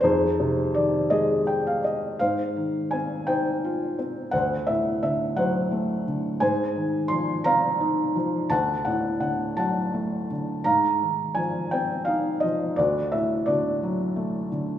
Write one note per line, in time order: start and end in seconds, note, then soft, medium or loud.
0.01 2.15 F2 medium
0.01 1.43 D#4 medium
0.01 1.09 G#4 medium
0.01 1.41 C5 medium
0.40 1.79 C3 medium
0.74 2.16 D#3 soft
0.74 1.11 D5 medium
1.10 2.17 G#3 soft
1.10 2.16 G#4 medium
1.10 1.83 D#5 medium
1.47 1.64 G5 medium
1.67 1.83 F5 medium
1.84 2.17 D#5 medium
2.19 4.30 G#2 soft
2.19 3.24 C5 soft
2.19 2.94 F5 medium
2.56 3.95 D#3 soft
2.91 3.97 C4 soft
2.91 3.24 G#5 medium
3.27 4.31 D#4 soft
3.27 4.29 C5 soft
3.27 4.36 G5 medium
3.64 4.32 F4 soft
3.99 4.33 C4 soft
4.31 6.37 D2 medium
4.31 5.33 C5 medium
4.31 4.68 F#5 medium
4.67 6.03 A2 soft
4.67 5.01 E5 medium
5.03 6.06 D3 soft
5.03 5.39 E5 medium
5.36 6.38 F#3 soft
5.36 6.38 C5 medium
5.36 6.44 F#5 medium
5.71 6.39 A3 soft
6.07 6.41 D3 soft
6.40 8.47 G#2 medium
6.40 7.42 C5 medium
6.40 7.06 G#5 medium
6.76 8.12 D#3 soft
7.08 8.14 F3 soft
7.08 7.46 C6 medium
7.44 8.48 C4 soft
7.44 8.47 F5 medium
7.44 8.54 A#5 medium
7.81 8.49 D#4 soft
8.15 8.50 F3 soft
8.50 10.61 D2 medium
8.50 8.83 F#5 medium
8.50 8.87 A5 medium
8.85 10.26 A2 soft
8.85 9.19 F#5 medium
9.20 10.30 D3 soft
9.20 9.58 F#5 medium
9.57 10.62 F#3 soft
9.57 10.62 F#5 medium
9.57 10.68 A5 medium
9.94 10.63 A3 soft
10.31 10.65 D3 soft
10.64 12.74 G#2 soft
10.64 11.68 F5 medium
10.64 11.38 A#5 medium
11.03 12.39 D#3 soft
11.35 12.43 F3 soft
11.35 11.72 G#5 medium
11.71 12.75 C4 soft
11.71 12.08 G5 medium
12.05 12.76 D#4 soft
12.05 12.42 F5 medium
12.40 12.77 F3 soft
12.40 12.78 D#5 medium
12.76 14.79 D2 medium
12.76 13.46 F#4 medium
12.76 13.13 D5 medium
13.12 14.47 A2 soft
13.12 13.48 E5 medium
13.46 14.50 D3 soft
13.46 14.79 F#4 soft
13.46 14.79 D5 medium
13.83 14.79 F#3 soft
14.16 14.79 A3 soft
14.52 14.79 D3 soft